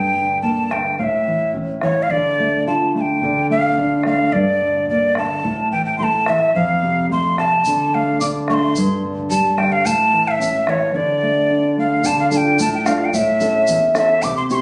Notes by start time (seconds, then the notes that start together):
Already playing: G2 G5
0.15 D3, bombo low
0.29 bombo low
0.42 A#3 A5, bombo low
0.71 D3 G5, bombo rim, bombo low
0.99 A2 F5, bombo low
1.03 E5
1.26 E3, bombo low
1.40 bombo low
1.54 C#4, bombo low
1.81 E3 C#5, bombo rim, bombo low
2.02 F5
2.09 D3 D5, bombo low
2.37 A3, bombo low
2.51 bombo low
2.65 F4 A5, bombo low
2.93 A3 A5, bombo low
3.01 G5
3.21 D3, bombo low
3.49 A3 F5, bombo low
3.63 bombo low
3.76 D4, bombo low
4.03 A3 F5, bombo rim, bombo low
4.31 G2 D5, bombo low
4.59 D3, bombo low
4.73 bombo low
4.87 A#3 D5, bombo low
5.15 D3 A5, bombo rim, bombo low
5.43 A2, bombo low
5.71 E3 G5, bombo low
5.85 G5, bombo low
5.98 A3 C6, bombo low
6.03 A5
6.26 E3 E5, bombo rim, bombo low
6.55 F2 F5, bombo low
6.82 C3
6.96 bombo low
7.09 A3 C6, bombo low
7.37 C3 A5, bombo rim, bombo low
7.65 D3, bombo low, shaker
7.93 A3 F5, bombo low
8.06 bombo low
8.20 D4 D6, bombo low, shaker
8.48 A3 C#6, bombo rim, bombo low
8.54 C6
8.75 G2, bombo low, shaker
9.03 D3, bombo low
9.17 bombo low
9.30 G3 A5, bombo low, shaker
9.58 D3 G5, bombo rim, bombo low
9.72 F5
9.85 A2 A5, bombo low, shaker
10.13 E3
10.26 F5, bombo low
10.31 E5
10.39 C#4, bombo low, shaker
10.67 E3 C#5, bombo rim, bombo low
10.94 D3 D5
11.23 A3
11.50 D4
11.77 A3 F5
12.04 D3 A5, bombo low, shaker
12.20 F5
12.31 D4 F4 A4 A5, bombo low, shaker
12.37 G5
12.58 A2 A5, bombo low, shaker
12.74 G5
12.85 D4 F4 A4 F5, bombo rim, shaker
13.05 G5
13.13 A2 E5, bombo low, shaker
13.40 C#4 E4 A4, bombo low, shaker
13.67 E2, bombo low, shaker
13.94 C#4 E4 A4 E5, bombo rim, shaker
14.22 C3 D6, bombo low, shaker
14.37 C6
14.50 C4 E4 G4 C#6, bombo low, shaker
14.55 C6